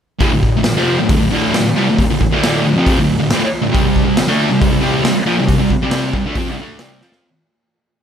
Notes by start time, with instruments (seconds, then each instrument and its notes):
0.19 distorted electric guitar D2 A2, kick, open hi-hat
0.33 distorted electric guitar D2 A2
0.43 kick
0.57 distorted electric guitar D2 A2
0.64 muted distorted electric guitar stroke, snare, open hi-hat
0.77 distorted electric guitar F2 C3 F3
1.00 distorted electric guitar D2 A2
1.09 distorted electric guitar D2 A2, kick, open hi-hat
1.19 distorted electric guitar D2 A2
1.31 distorted electric guitar D2 A2 D3
1.54 distorted electric guitar D2 A2, snare, open hi-hat
1.67 muted distorted electric guitar stroke
1.76 distorted electric guitar C3 G3
1.89 distorted electric guitar D2 A2
1.99 kick, open hi-hat
2.10 distorted electric guitar D2 A2
2.20 muted distorted electric guitar stroke, kick
2.31 distorted electric guitar D2 A2 D3
2.44 snare, open hi-hat
2.66 distorted electric guitar D2 A2
2.76 distorted electric guitar F2 C3 F3
2.87 kick, open hi-hat
2.98 distorted electric guitar D2 A2
3.19 distorted electric guitar D2 A2
3.31 distorted electric guitar D2 A2, snare, open hi-hat
3.42 muted distorted electric guitar stroke
3.62 distorted electric guitar D2 A2
3.72 distorted electric guitar C3 G3, kick, open hi-hat
3.86 distorted electric guitar C3 G3
3.96 kick
4.05 distorted electric guitar C3 G3
4.17 muted distorted electric guitar stroke, snare, open hi-hat
4.28 distorted electric guitar D3 A3 D4
4.50 distorted electric guitar C3 G3
4.61 distorted electric guitar C3 G3, kick, open hi-hat
4.71 distorted electric guitar C3 G3
4.81 distorted electric guitar C3 G3 C4
5.03 distorted electric guitar C3 G3, snare, open hi-hat
5.14 muted distorted electric guitar stroke
5.26 distorted electric guitar A#2 F3
5.39 distorted electric guitar C3 G3
5.48 kick, open hi-hat
5.58 distorted electric guitar C3 G3
5.70 muted distorted electric guitar stroke, kick
5.82 distorted electric guitar C3 G3 C4
5.91 snare, open hi-hat
6.14 distorted electric guitar C3 G3, kick
6.26 distorted electric guitar D3 A3
6.35 distorted electric guitar F3 C4, kick, open hi-hat
6.49 distorted electric guitar C3 G3
6.60 distorted electric guitar D3 A3 D4
6.79 distorted electric guitar C3 G3 C4, snare, open hi-hat
7.01 distorted electric guitar F3 C4 F4, snare
7.12 snare